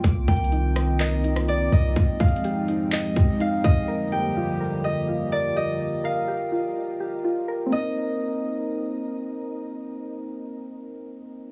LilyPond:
<<
  \new Staff \with { instrumentName = "Harp" } { \time 4/4 \key c \minor \tempo 4 = 125 r8 g''4. ees''4 d''8 ees''8 | r8 f''4. ees''4 f''8 ees''8 | r8 g''4. ees''4 d''8 ees''8 | r8 f''2.~ f''8 |
ees''2. r4 | r1 | }
  \new Staff \with { instrumentName = "Synth keys" } { \time 4/4 \key c \minor d'''8 bes'8 ees'8 ees''8 bes'8 ees'8 d''8 bes'8 | r8 aes'8 g'8 ees'4 g'8 ees'8 aes'8 | bes'8 g'8 f'8 bes'8 g'8 f'8 bes'8 g'8~ | g'8 bes'8 g'8 f'4 g'8 f'8 bes'8 |
<bes c' ees' bes'>1~ | <bes c' ees' bes'>1 | }
  \new Staff \with { instrumentName = "Analog synth pad" } { \time 4/4 \key c \minor << { g''1~ | g''1 | g'1 | r1 |
r1 | r1 | } \\ { <ees bes c' f'>1 | <f aes c' ees'>1 | <d f g bes>1 | r1 |
r1 | r1 | } >> }
  \new Staff \with { instrumentName = "808-style bass" } { \clef bass \time 4/4 \key c \minor c,8 c,2. c,8 | r1 | r1 | r1 |
r1 | r1 | }
  \new DrumStaff \with { instrumentName = "Drums" } \drummode { \time 4/4 \tuplet 3/2 { <hh bd>16 r16 r16 <hh bd>16 hh16 hh16 } hh8 <hh ss>8 <hc hh>8 hh16 ss16 hh8 hh8 | \tuplet 3/2 { <hh bd>16 r16 r16 <hh bd>16 hh16 hh16 } hh8 hh8 <hc hh>8 <hh bd>8 hh8 <hh bd>8 | r4 r4 r4 r4 | r4 r4 r4 r4 |
r4 r4 r4 r4 | r4 r4 r4 r4 | }
>>